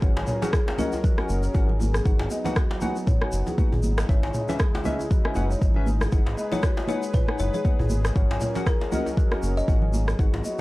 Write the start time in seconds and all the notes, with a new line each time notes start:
Already playing: G#4
0.02 G#1 F#3 C#4 F#4 A#4 C#5 F#5, kick, shaker
0.16 G#1 G#5, djembe slap
0.27 C#5, mid tom, muted conga, djembe tone, shaker
0.42 C#4 F#4 G#4 A#4 F#5, djembe slap, low conga, shaker
0.53 G#4, kick, cross-stick, djembe tone, shaker
0.67 muted conga, djembe slap
0.78 C#4 F#4 A#4 D#5 F#5, high conga, low conga, djembe bass, shaker
0.92 djembe tone, shaker
1.04 F#4, kick, low conga, shaker
1.18 C#4 F#4 A#4 F#5 G#5, cross-stick, muted conga, djembe tone
1.29 F#1, high conga, shaker
1.43 C#5, shaker
1.54 G#1 C#4 F#4 A#4 F#5, kick, muted conga, djembe tone, shaker
1.69 G#5, low conga
1.80 djembe tone, high conga, shaker
1.94 G#4, cross-stick, muted conga, shaker
2.05 G#1 F#3 B3 D#4 F#4 G#4 B4 F#5, kick, shaker
2.19 G#1, djembe slap, djembe tone
2.30 D#5, muted conga, shaker
2.45 D#4 F#4 B4 F#5, djembe slap, djembe tone, high conga, low conga, shaker
2.56 F#4, kick, cross-stick, shaker
2.71 djembe slap, muted conga
2.81 D#4 F#4 B4 F#5 G#5, djembe tone, high conga, low conga, shaker
2.96 shaker
3.07 C#5, kick, mid tom, djembe tone, shaker
3.21 D#4 F#4 B4 F#5 G#5, cross-stick, muted conga
3.32 F#1, shaker
3.47 G#4, djembe tone, low conga, shaker
3.58 D#4 F#4 B4 F#5, kick, muted conga, high conga, shaker
3.72 G#1 G#4, mid tom, djembe tone, djembe bass
3.83 high conga, shaker
3.98 cross-stick, djembe slap, muted conga, shaker
4.09 G#1 C#3 G#3 C#4 E4 G#4 B4 C#5 E5, kick, djembe tone, shaker
4.23 G#1 G#5, djembe slap
4.34 C#5, mid tom, muted conga, djembe tone, shaker
4.49 C#4 G#4 B4 E5, djembe slap, low conga, shaker
4.59 G#4, kick, cross-stick, shaker
4.74 muted conga, djembe slap, djembe tone
4.85 C#4 G#4 B4 D#5 E5, high conga, low conga, djembe bass, shaker
5.00 djembe tone, shaker
5.11 F#4, kick, low conga, shaker
5.25 C#4 G#4 B4 E5 G#5, cross-stick, muted conga
5.35 F#1 C#4 G#4 B4 F#5, djembe tone, high conga, shaker
5.50 C#5, shaker
5.61 G#1, kick, muted conga, djembe tone, shaker
5.74 C#4 G#4 B4 E5 G#5, low conga
5.86 high conga, shaker
6.01 G#4, cross-stick, muted conga, djembe tone, shaker
6.12 G#1 G#3 D#4 G#4 B4 F#5, kick, djembe tone, shaker
6.26 G#1, djembe slap
6.37 D#5, muted conga, shaker
6.52 D#4 G#4 B4 C#5 F#5, djembe slap, high conga, djembe tone, low conga, shaker
6.63 F#4, kick, cross-stick, shaker
6.77 djembe slap, muted conga, djembe tone
6.88 D#4 G#4 B4 C#5 F#5 G#5, high conga, low conga, shaker
7.03 shaker
7.14 B4 C#5, kick, mid tom, djembe tone, shaker
7.28 D#4 G#4 B4 F#5 G#5, cross-stick, muted conga
7.39 F#1 C#5, djembe tone, shaker
7.54 G#4 C#5, low conga, shaker
7.64 D#4 G#4 B4 F#5, kick, muted conga, high conga, shaker
7.79 G#1 G#4, mid tom, djembe tone, djembe bass
7.90 high conga, shaker
8.04 cross-stick, djembe slap, muted conga, djembe tone, shaker
8.16 G#1 F#3 C#4 F#4 A#4 C#5 F#5, kick, shaker
8.30 G#1 G#5, djembe slap
8.41 C#5, mid tom, muted conga, djembe tone, shaker
8.55 C#4 F#4 A#4 F#5, djembe slap, low conga, shaker
8.66 G#4 A#4, kick, cross-stick, djembe tone, shaker
8.81 muted conga, djembe slap
8.92 C#4 F#4 A#4 D#5 F#5, high conga, djembe bass, low conga, shaker
9.06 djembe tone, shaker
9.17 F#4, kick, low conga, shaker
9.31 C#4 F#4 A#4 F#5 G#5, cross-stick, muted conga, djembe tone
9.43 F#1, high conga, shaker
9.57 C#5 D#5, shaker
9.68 G#1 C#4 F#4 A#4 F#5, kick, muted conga, djembe tone, shaker
9.82 G#5, low conga
9.94 high conga, djembe tone, shaker
10.08 G#4, cross-stick, muted conga, shaker
10.19 G#1 B3 D#4 F#4 G#4 B4 F#5, kick, shaker
10.33 G#1, djembe slap, djembe tone
10.44 D#5, muted conga, shaker